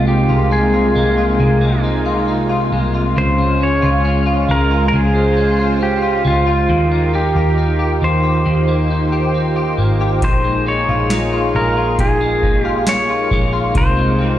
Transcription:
Already playing: picked electric bass C2, clean electric guitar C3 G#3 F4, analog synth pad C3 G#3 A#3 D#4 F4
0.07 clean electric guitar D#4, pedal steel guitar G4
0.29 picked electric bass C2, clean electric guitar F4
0.51 clean electric guitar D#4, pedal steel guitar G#4
0.73 clean electric guitar F4
0.95 picked electric bass C2, clean electric guitar G#3
1.18 clean electric guitar F4
1.40 picked electric bass C2, clean electric guitar C3
1.61 clean electric guitar G#3
1.84 clean electric guitar D#4
2.06 clean electric guitar F4
2.28 clean electric guitar D#4
2.49 clean electric guitar F4
2.72 picked electric bass C2, clean electric guitar G#3
2.94 clean electric guitar F4
3.16 picked electric bass C#2, clean electric guitar C#3, analog synth pad G#3 C#4, pedal steel guitar C5
3.38 clean electric guitar G#3
3.60 clean electric guitar C#4, pedal steel guitar C#5
3.82 picked electric bass C#2, clean electric guitar F4
4.04 clean electric guitar C#4
4.26 clean electric guitar F4
4.49 picked electric bass C#2, clean electric guitar G#3, pedal steel guitar A#4
4.71 clean electric guitar F4
4.88 pedal steel guitar A#4
4.93 picked electric bass C#2, clean electric guitar C#3, pedal steel guitar G#4, analog synth pad C5
5.15 clean electric guitar G#3
5.37 clean electric guitar C#4
5.59 clean electric guitar F4
5.80 clean electric guitar C#4, pedal steel guitar G4
6.02 clean electric guitar F4
6.25 picked electric bass C#2, clean electric guitar G#3, pedal steel guitar F4
6.47 clean electric guitar F4
6.68 picked electric bass D#2, analog synth pad D#3 D#4 G4 A#4, clean electric guitar D#3
6.92 clean electric guitar A#3
7.14 clean electric guitar D#4, pedal steel guitar G4
7.36 picked electric bass D#2, clean electric guitar G4
7.58 clean electric guitar D#4
7.79 clean electric guitar G4
8.02 picked electric bass D#2, clean electric guitar A#3, pedal steel guitar C5
8.23 clean electric guitar G4
8.46 picked electric bass D#2, clean electric guitar D#3, analog synth pad C5
8.68 clean electric guitar A#3
8.90 clean electric guitar D#4
9.12 clean electric guitar G4
9.34 clean electric guitar D#4
9.56 clean electric guitar G4
9.78 picked electric bass G#1, clean electric guitar A#3
10.01 clean electric guitar G4
10.22 picked electric bass A#1, clean electric guitar A#2, analog synth pad A#3 G#4, pedal steel guitar C5, kick, closed hi-hat
10.44 clean electric guitar G#3
10.66 clean electric guitar D#4, pedal steel guitar C#5
10.89 picked electric bass A#1, clean electric guitar F4
11.10 clean electric guitar D#4, vibraphone F4, snare, closed hi-hat
11.33 clean electric guitar F4
11.55 picked electric bass A#1, clean electric guitar G#3, pedal steel guitar A#4
11.77 clean electric guitar F4
11.99 picked electric bass A#1, clean electric guitar A#2, pedal steel guitar G#4, kick, closed hi-hat
12.21 clean electric guitar G#3
12.43 clean electric guitar D#4, kick
12.61 clean electric guitar F4, pedal steel guitar G4
12.87 clean electric guitar D#4, pedal steel guitar C#5, snare, closed hi-hat
13.09 clean electric guitar F4
13.31 picked electric bass A#1, clean electric guitar G#3, kick
13.53 clean electric guitar F4
13.75 picked electric bass C2, analog synth pad C3 G#3 D#4 F4, clean electric guitar C3, pedal steel guitar C5, kick, closed hi-hat
13.97 clean electric guitar G#3
14.19 clean electric guitar C4

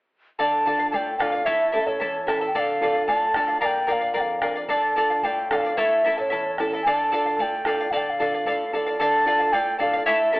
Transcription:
0.39 nylon-string guitar D3, charango A4 D5 F5, quena A5, bombo low
0.66 nylon-string guitar D4 F4 A4, charango A4 D5 F5, bombo low
0.79 charango D5 F5, bombo low
0.91 nylon-string guitar A2, charango A4 D5 F5, quena A5, bombo low
0.95 quena G5
1.17 nylon-string guitar D4 F4 A4, charango A4 D5 F5, quena F5 G5, bombo rim, bombo low
1.32 charango D5 F5
1.45 nylon-string guitar A2, charango E4 A4 C#5 E5 A5, quena E5, bombo low
1.72 nylon-string guitar C#4 E4 A4, charango E4 A4 E5 A5, bombo low
1.81 quena E5
1.87 charango E4 A4 A5, quena C#5, bombo low
2.00 nylon-string guitar E2, charango E4 A4 E5 A5, bombo low
2.26 nylon-string guitar C#4 E4 A4, charango E4 A4 E5 A5, bombo rim, bombo low
2.41 charango E4 A4 A5
2.47 quena G5
2.54 nylon-string guitar D3, charango A4 D5 F5, quena G5, bombo low
2.59 quena F5
2.81 nylon-string guitar D4 F4 A4, charango A4 D5 F5, bombo low
2.94 charango D5 F5, bombo low
3.07 nylon-string guitar A2, charango A4 D5 F5, quena A5, bombo low
3.34 nylon-string guitar D4 F4 A4, charango A4 D5 F5, bombo rim, bombo low
3.48 charango D5 F5
3.61 nylon-string guitar A#2, charango A#4 D5 F5, quena A5, bombo low
3.66 quena G5
3.87 nylon-string guitar D4 F4 A#4, charango A#4 D5 F5, quena G5, bombo low
3.92 quena F5
4.01 charango D5 F5, bombo low
4.14 nylon-string guitar F2, charango A#4 D5 F5, quena G5, bombo low
4.20 quena F5
4.41 nylon-string guitar D4 F4 A#4, charango A#4 D5 F5, bombo rim, bombo low
4.55 charango D5 F5
4.68 nylon-string guitar D3, charango A4 D5 F5, quena A5, bombo low
4.96 nylon-string guitar D4 F4 A4, charango A4 D5 F5, bombo low
5.09 charango D5 F5, bombo low
5.23 nylon-string guitar A2, charango A4 D5 F5, quena G5, bombo low
5.50 nylon-string guitar D4 F4 A4, charango A4 D5 F5, quena G5, bombo rim, bombo low
5.55 quena F5
5.64 charango D5 F5
5.77 nylon-string guitar A2, charango E4 A4 C#5 E5 A5, quena E5, bombo low
6.04 nylon-string guitar C#4 E4 A4, charango E4 A4 E5 A5, bombo low
6.18 charango E4 A4 A5, quena C#5, bombo low
6.30 nylon-string guitar E2, charango E4 A4 E5 A5, bombo low
6.58 nylon-string guitar C#4 E4 A4, charango E4 A4 E5 A5, bombo rim, bombo low
6.73 charango E4 A4 A5
6.83 nylon-string guitar D3, charango A4 D5, quena A5, bombo low
6.87 charango F5
7.12 nylon-string guitar D4 F4 A4, charango A4 D5 F5, bombo low
7.25 charango D5 F5, bombo low
7.37 nylon-string guitar A2, charango A4 D5 F5, quena A5, bombo low
7.42 quena G5
7.65 nylon-string guitar D4 F4 A4, charango A4 D5 F5, bombo rim, bombo low
7.80 charango D5 F5
7.91 nylon-string guitar D3, charango A4 D5 F5, quena F5, bombo low
7.97 quena G5
8.06 quena G5
8.10 quena F5
8.19 nylon-string guitar D4 F4 A4, charango A4 D5 F5, bombo low
8.32 charango D5 F5, bombo low
8.45 nylon-string guitar A2, charango A4 D5 F5, bombo low
8.73 nylon-string guitar D4 F4 A4, charango A4 D5 F5
8.86 charango D5 F5
8.99 nylon-string guitar D3, charango A4 D5 F5, quena A5
9.26 nylon-string guitar D4 F4 A4, charango A4 D5 F5
9.40 charango D5 F5
9.52 nylon-string guitar A2, charango A4 D5 F5, quena G5
9.79 nylon-string guitar D4 F4 A4, charango A4 D5 F5, quena F5
9.93 charango D5 F5
10.06 nylon-string guitar A2, charango E4 A4 C#5 E5 A5, quena E5
10.32 nylon-string guitar C#4 E4 A4, charango E4 A4 E5 A5

